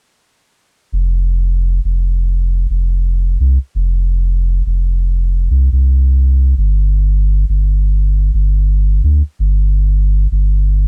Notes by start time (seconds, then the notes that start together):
0.92 F1
1.84 F1
2.70 F1
3.40 C2
3.75 F1
4.66 F1
5.50 C2
5.72 C2
6.57 G1
7.49 G1
8.34 G1
9.04 D2
9.39 G1
10.31 G1